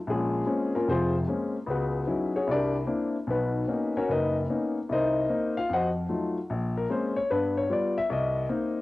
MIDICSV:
0, 0, Header, 1, 2, 480
1, 0, Start_track
1, 0, Key_signature, -5, "minor"
1, 0, Tempo, 400534
1, 95, Time_signature, 4, 2, 24, 8
1, 10566, End_track
2, 0, Start_track
2, 0, Title_t, "Grand piano"
2, 0, Program_c, 0, 0
2, 85, Note_on_c, 0, 34, 70
2, 120, Note_on_c, 0, 68, 72
2, 128, Note_on_c, 0, 56, 55
2, 129, Note_on_c, 0, 61, 55
2, 130, Note_on_c, 0, 65, 56
2, 506, Note_off_c, 0, 34, 0
2, 536, Note_off_c, 0, 56, 0
2, 545, Note_off_c, 0, 61, 0
2, 554, Note_on_c, 0, 56, 52
2, 557, Note_on_c, 0, 58, 46
2, 558, Note_on_c, 0, 60, 48
2, 563, Note_on_c, 0, 61, 61
2, 853, Note_off_c, 0, 68, 0
2, 858, Note_off_c, 0, 65, 0
2, 887, Note_off_c, 0, 58, 0
2, 890, Note_off_c, 0, 61, 0
2, 894, Note_off_c, 0, 56, 0
2, 896, Note_off_c, 0, 60, 0
2, 897, Note_on_c, 0, 70, 66
2, 905, Note_on_c, 0, 58, 56
2, 908, Note_on_c, 0, 61, 57
2, 909, Note_on_c, 0, 65, 63
2, 1046, Note_on_c, 0, 41, 60
2, 1051, Note_on_c, 0, 29, 72
2, 1057, Note_off_c, 0, 70, 0
2, 1061, Note_off_c, 0, 58, 0
2, 1062, Note_off_c, 0, 61, 0
2, 1062, Note_off_c, 0, 65, 0
2, 1070, Note_on_c, 0, 72, 87
2, 1080, Note_on_c, 0, 65, 70
2, 1080, Note_on_c, 0, 68, 67
2, 1081, Note_on_c, 0, 60, 65
2, 1367, Note_off_c, 0, 72, 0
2, 1372, Note_off_c, 0, 65, 0
2, 1372, Note_off_c, 0, 68, 0
2, 1373, Note_off_c, 0, 60, 0
2, 1467, Note_off_c, 0, 41, 0
2, 1470, Note_off_c, 0, 29, 0
2, 1532, Note_on_c, 0, 56, 48
2, 1536, Note_on_c, 0, 60, 46
2, 1539, Note_on_c, 0, 61, 54
2, 1541, Note_on_c, 0, 58, 44
2, 1864, Note_off_c, 0, 56, 0
2, 1866, Note_off_c, 0, 60, 0
2, 1868, Note_off_c, 0, 61, 0
2, 1869, Note_off_c, 0, 58, 0
2, 1994, Note_on_c, 0, 37, 66
2, 2039, Note_on_c, 0, 71, 67
2, 2043, Note_on_c, 0, 66, 58
2, 2045, Note_on_c, 0, 59, 51
2, 2050, Note_on_c, 0, 68, 51
2, 2422, Note_off_c, 0, 37, 0
2, 2461, Note_off_c, 0, 59, 0
2, 2478, Note_on_c, 0, 61, 50
2, 2479, Note_on_c, 0, 54, 57
2, 2479, Note_on_c, 0, 59, 45
2, 2484, Note_on_c, 0, 63, 46
2, 2485, Note_on_c, 0, 64, 58
2, 2775, Note_off_c, 0, 71, 0
2, 2776, Note_off_c, 0, 66, 0
2, 2780, Note_off_c, 0, 68, 0
2, 2818, Note_off_c, 0, 61, 0
2, 2819, Note_off_c, 0, 54, 0
2, 2819, Note_off_c, 0, 59, 0
2, 2821, Note_off_c, 0, 63, 0
2, 2822, Note_off_c, 0, 64, 0
2, 2827, Note_on_c, 0, 73, 77
2, 2833, Note_on_c, 0, 66, 56
2, 2833, Note_on_c, 0, 68, 58
2, 2840, Note_on_c, 0, 61, 56
2, 2962, Note_on_c, 0, 36, 67
2, 2983, Note_off_c, 0, 73, 0
2, 2986, Note_off_c, 0, 66, 0
2, 2987, Note_off_c, 0, 68, 0
2, 2990, Note_off_c, 0, 61, 0
2, 3012, Note_on_c, 0, 74, 82
2, 3017, Note_on_c, 0, 70, 59
2, 3018, Note_on_c, 0, 67, 63
2, 3019, Note_on_c, 0, 62, 65
2, 3300, Note_off_c, 0, 74, 0
2, 3303, Note_off_c, 0, 67, 0
2, 3303, Note_off_c, 0, 70, 0
2, 3304, Note_off_c, 0, 62, 0
2, 3387, Note_off_c, 0, 36, 0
2, 3438, Note_on_c, 0, 58, 54
2, 3441, Note_on_c, 0, 60, 45
2, 3444, Note_on_c, 0, 62, 50
2, 3447, Note_on_c, 0, 64, 57
2, 3779, Note_off_c, 0, 58, 0
2, 3780, Note_off_c, 0, 60, 0
2, 3782, Note_off_c, 0, 62, 0
2, 3784, Note_off_c, 0, 64, 0
2, 3921, Note_on_c, 0, 35, 67
2, 3960, Note_on_c, 0, 66, 54
2, 3961, Note_on_c, 0, 71, 72
2, 3968, Note_on_c, 0, 63, 53
2, 3969, Note_on_c, 0, 59, 58
2, 4347, Note_off_c, 0, 35, 0
2, 4397, Note_off_c, 0, 59, 0
2, 4407, Note_off_c, 0, 63, 0
2, 4410, Note_on_c, 0, 58, 49
2, 4415, Note_on_c, 0, 59, 48
2, 4418, Note_on_c, 0, 61, 45
2, 4425, Note_on_c, 0, 63, 63
2, 4696, Note_off_c, 0, 66, 0
2, 4697, Note_off_c, 0, 71, 0
2, 4740, Note_off_c, 0, 61, 0
2, 4746, Note_off_c, 0, 58, 0
2, 4748, Note_off_c, 0, 59, 0
2, 4753, Note_off_c, 0, 63, 0
2, 4754, Note_on_c, 0, 70, 72
2, 4756, Note_on_c, 0, 73, 81
2, 4758, Note_on_c, 0, 61, 73
2, 4758, Note_on_c, 0, 66, 68
2, 4898, Note_on_c, 0, 30, 71
2, 4909, Note_off_c, 0, 70, 0
2, 4909, Note_off_c, 0, 73, 0
2, 4911, Note_off_c, 0, 61, 0
2, 4911, Note_off_c, 0, 66, 0
2, 4925, Note_on_c, 0, 75, 74
2, 4926, Note_on_c, 0, 63, 57
2, 4929, Note_on_c, 0, 70, 63
2, 4930, Note_on_c, 0, 71, 60
2, 5217, Note_off_c, 0, 75, 0
2, 5218, Note_off_c, 0, 63, 0
2, 5220, Note_off_c, 0, 70, 0
2, 5220, Note_off_c, 0, 71, 0
2, 5316, Note_off_c, 0, 30, 0
2, 5386, Note_on_c, 0, 58, 48
2, 5392, Note_on_c, 0, 59, 48
2, 5393, Note_on_c, 0, 63, 53
2, 5394, Note_on_c, 0, 61, 45
2, 5714, Note_off_c, 0, 58, 0
2, 5717, Note_off_c, 0, 59, 0
2, 5718, Note_off_c, 0, 61, 0
2, 5718, Note_off_c, 0, 63, 0
2, 5861, Note_on_c, 0, 36, 63
2, 5899, Note_on_c, 0, 75, 78
2, 5902, Note_on_c, 0, 70, 69
2, 5903, Note_on_c, 0, 63, 65
2, 5906, Note_on_c, 0, 72, 67
2, 6278, Note_off_c, 0, 36, 0
2, 6334, Note_off_c, 0, 63, 0
2, 6344, Note_on_c, 0, 58, 55
2, 6349, Note_on_c, 0, 60, 45
2, 6352, Note_on_c, 0, 63, 64
2, 6626, Note_off_c, 0, 75, 0
2, 6627, Note_off_c, 0, 70, 0
2, 6629, Note_off_c, 0, 72, 0
2, 6673, Note_off_c, 0, 58, 0
2, 6676, Note_off_c, 0, 60, 0
2, 6677, Note_off_c, 0, 63, 0
2, 6679, Note_on_c, 0, 77, 83
2, 6696, Note_on_c, 0, 65, 59
2, 6824, Note_on_c, 0, 41, 64
2, 6831, Note_off_c, 0, 77, 0
2, 6840, Note_off_c, 0, 65, 0
2, 6870, Note_on_c, 0, 78, 81
2, 6874, Note_on_c, 0, 72, 65
2, 6879, Note_on_c, 0, 75, 69
2, 6880, Note_on_c, 0, 66, 69
2, 7043, Note_off_c, 0, 78, 0
2, 7046, Note_off_c, 0, 72, 0
2, 7050, Note_off_c, 0, 75, 0
2, 7051, Note_off_c, 0, 66, 0
2, 7239, Note_off_c, 0, 41, 0
2, 7298, Note_on_c, 0, 54, 47
2, 7300, Note_on_c, 0, 57, 48
2, 7303, Note_on_c, 0, 63, 46
2, 7310, Note_on_c, 0, 65, 54
2, 7630, Note_off_c, 0, 54, 0
2, 7631, Note_off_c, 0, 57, 0
2, 7632, Note_off_c, 0, 63, 0
2, 7636, Note_off_c, 0, 65, 0
2, 7789, Note_on_c, 0, 34, 72
2, 8117, Note_on_c, 0, 70, 75
2, 8202, Note_off_c, 0, 34, 0
2, 8263, Note_on_c, 0, 56, 54
2, 8266, Note_on_c, 0, 58, 44
2, 8269, Note_on_c, 0, 61, 62
2, 8270, Note_off_c, 0, 70, 0
2, 8271, Note_on_c, 0, 60, 49
2, 8286, Note_on_c, 0, 72, 64
2, 8577, Note_off_c, 0, 72, 0
2, 8585, Note_on_c, 0, 73, 85
2, 8592, Note_off_c, 0, 56, 0
2, 8593, Note_off_c, 0, 58, 0
2, 8595, Note_off_c, 0, 61, 0
2, 8596, Note_off_c, 0, 60, 0
2, 8744, Note_off_c, 0, 73, 0
2, 8755, Note_on_c, 0, 43, 72
2, 8756, Note_on_c, 0, 59, 64
2, 8758, Note_on_c, 0, 71, 78
2, 9053, Note_off_c, 0, 71, 0
2, 9077, Note_on_c, 0, 73, 80
2, 9164, Note_off_c, 0, 43, 0
2, 9164, Note_off_c, 0, 59, 0
2, 9225, Note_on_c, 0, 55, 55
2, 9229, Note_off_c, 0, 73, 0
2, 9232, Note_on_c, 0, 59, 46
2, 9234, Note_on_c, 0, 65, 57
2, 9259, Note_on_c, 0, 74, 74
2, 9543, Note_off_c, 0, 74, 0
2, 9552, Note_off_c, 0, 55, 0
2, 9555, Note_off_c, 0, 59, 0
2, 9556, Note_off_c, 0, 65, 0
2, 9559, Note_on_c, 0, 76, 93
2, 9703, Note_on_c, 0, 36, 79
2, 9710, Note_off_c, 0, 76, 0
2, 9738, Note_on_c, 0, 75, 73
2, 10116, Note_off_c, 0, 36, 0
2, 10176, Note_on_c, 0, 58, 55
2, 10177, Note_on_c, 0, 60, 50
2, 10184, Note_on_c, 0, 63, 61
2, 10505, Note_off_c, 0, 58, 0
2, 10506, Note_off_c, 0, 60, 0
2, 10509, Note_off_c, 0, 63, 0
2, 10566, Note_off_c, 0, 75, 0
2, 10566, End_track
0, 0, End_of_file